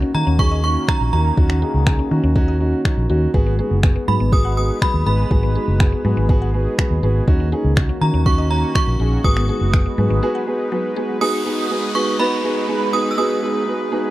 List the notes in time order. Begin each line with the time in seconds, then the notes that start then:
Already playing: D#3 A#3 C#4 F#4
0.02 C#4
0.14 D#3 C#4 D#4 F#4 A#5
0.27 D#2 C#4
0.39 C#4 D#4 F#4 G#4 C#6, kick
0.52 D#5
0.63 C#4 D#4 F#4 C#6
0.88 D#3 C#4 D#4 F#4 A#5, finger snap, kick
1.01 A#1
1.13 D#2 C#4 D#4 F#4 A#5
1.37 D#2 D#3 C#4 D#4 F#4, kick
1.50 C#4, finger snap
1.62 C#4 D#4 F#4 G#4
1.74 C#2
1.86 C#4 D#4 G#4, finger snap, kick
1.99 C#4
2.11 D#3 C#4 D#4 F#4
2.24 D#2 C#4
2.35 C#4 D#4 F#4, kick
2.48 D#5
2.60 C#4 D#4 F#4
2.85 D#3 C#4 D#4 F#4, finger snap, kick
2.97 A#1
3.09 D#2 C#4 D#4 F#4
3.34 G#1 F#3 G#3 B3 D#4 F#4 G#4 B4, kick
3.46 B3
3.58 B3 F#4 G#4
3.71 F#1
3.83 B3 F#4 G#4, finger snap, kick
3.96 B3
4.08 G#2 F#3 B3 F#4 G#4 B5
4.20 G#1 B3
4.32 B3 F#4 G#4 D#6, kick
4.45 F#5
4.57 B3 F#4 G#4 D#6
4.81 F#3 B3 F#4 G#4 B5, finger snap, kick
4.94 D#2
5.06 G#1 B3 F#4 G#4 B5
5.31 G#1 F#3 B3 F#4 G#4, kick
5.43 B3
5.55 B3 F#4 G#4 B4
5.68 F#1
5.80 B3 F#4 G#4, finger snap, kick
5.92 B3
6.05 G#2 F#3 B3 F#4 G#4
6.17 G#1 B3
6.29 B3 F#4 G#4, kick
6.42 F#5
6.54 B3 F#4 G#4
6.78 F#3 B3 F#4 G#4, finger snap, kick
6.91 D#2
7.03 G#1 B3 F#4 G#4
7.27 D#2 D#3 A#3 C#4 D#4 F#4, kick
7.40 C#4
7.52 C#4 D#4 F#4 G#4
7.65 C#2
7.77 C#4 D#4 F#4, finger snap, kick
7.89 C#4
8.01 D#3 C#4 D#4 F#4 A#5
8.14 D#2 C#4
8.26 C#4 D#4 F#4 C#6, kick
8.38 D#5
8.50 C#4 D#4 F#4 A#5
8.75 D#3 C#4 D#4 F#4 C#6, finger snap, kick
8.87 A#1
9.00 A#1 C#4 D#4 F#4 G#4
9.24 G#1 F#3 G#3 B3 D#4 F#4 G#4 B4 D#6, kick
9.37 B3, finger snap
9.49 B3 F#4 G#4
9.61 F#1
9.73 B3 G#4, finger snap, kick
9.86 B3
9.98 G#2 F#3 B3 F#4 G#4
10.10 G#1 B3
10.22 B3 F#4 G#4
10.35 F#5
10.47 B3 F#4 G#4
10.72 F#3 B3 F#4 G#4
10.96 B3 F#4 G#4
11.21 G#3 B3 D#4 F#4 G#4 B4 D#6, downlifter
11.45 B3 D#4 F#4 G#4
11.70 B3 D#4 F#4 G#4
11.95 B3 D#4 F#4 G#4 C#6
12.19 B3 D#4 F#4 B4 B5
12.44 B3 D#4 F#4 G#4
12.68 B3 D#4 F#4 G#4
12.93 B3 D#4 F#4 G#4 D#6
13.11 E6
13.18 B3 D#4 F#4 G#4 D#6
13.42 B3 D#4 F#4 G#4
13.67 B3 D#4 F#4 B4
13.91 B3 D#4 F#4 G#4